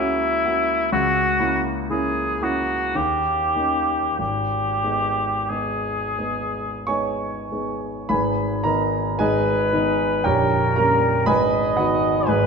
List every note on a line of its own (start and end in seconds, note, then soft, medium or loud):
0.00 0.92 C#2 medium
0.00 0.45 A#3 soft
0.00 0.45 C#4 soft
0.00 0.92 E4 medium
0.00 0.46 F#4 soft
0.45 0.89 A#3 soft
0.45 0.89 C#4 soft
0.45 0.89 F#4 soft
0.92 1.39 C#2 medium
0.92 1.62 F#4 medium
1.40 1.87 A#3 soft
1.40 1.87 C#4 soft
1.40 1.87 E4 soft
1.90 2.39 A#3 soft
1.90 2.39 C#4 soft
1.90 2.39 E4 soft
1.90 2.45 G#4 medium
2.41 2.92 A#3 soft
2.41 2.92 C#4 soft
2.41 2.93 E4 soft
2.41 2.98 F#4 medium
2.95 3.53 D#2 medium
2.95 4.18 G4 medium
3.55 4.15 A#3 soft
3.55 4.15 C#4 soft
3.55 4.15 D#4 soft
4.19 4.82 G#1 soft
4.19 5.51 G4 medium
4.83 5.45 G#3 soft
4.83 5.45 B3 soft
4.83 5.45 D#4 soft
5.49 6.15 G#3 soft
5.49 6.15 B3 soft
5.49 6.15 D#4 soft
5.49 6.89 G#4 soft
6.18 6.84 G#3 soft
6.18 6.85 B3 soft
6.18 6.85 D#4 soft
6.87 7.49 G#3 soft
6.87 7.49 B3 soft
6.87 7.49 D#4 soft
6.87 8.07 C#5 soft
6.87 8.06 G#5 medium
6.87 8.10 C#6 medium
7.52 8.06 G#3 soft
7.52 8.06 B3 soft
7.52 8.07 D#4 soft
8.09 8.63 G#1 medium
8.09 8.63 G#2 soft
8.09 8.61 B4 medium
8.09 8.61 G#5 medium
8.09 8.64 B5 medium
8.64 9.16 D#3 soft
8.64 9.16 B3 soft
8.64 9.16 D#4 soft
8.64 9.16 A#4 medium
8.64 9.19 A#5 medium
9.19 9.72 G#1 soft
9.19 9.72 G#2 medium
9.19 10.21 G#4 medium
9.19 10.26 B4 medium
9.19 10.21 D#5 medium
9.19 10.25 G#5 medium
9.73 10.21 D#3 soft
9.73 10.21 B3 soft
9.73 10.22 D#4 soft
10.24 10.75 A#0 soft
10.24 10.75 A#1 medium
10.24 10.73 G4 medium
10.24 11.26 A#4 medium
10.24 10.73 C#5 medium
10.24 10.76 G5 medium
10.76 11.23 G3 soft
10.76 11.24 A#3 soft
10.76 11.24 C#4 soft
10.76 11.24 A#4 medium
10.76 11.27 A#5 medium
11.26 11.76 G#1 medium
11.26 11.76 G#2 medium
11.26 11.74 B4 medium
11.26 12.29 D#5 medium
11.26 11.74 G#5 medium
11.26 11.77 B5 medium
11.77 12.24 D#3 soft
11.77 12.24 B3 soft
11.77 12.24 D#4 soft
11.77 12.24 F#4 medium
11.77 12.27 F#5 medium
12.27 12.47 G#1 medium
12.27 12.47 G#2 medium
12.27 12.47 G#4 medium
12.27 12.47 B4 medium
12.27 12.47 D#5 medium
12.27 12.47 G#5 medium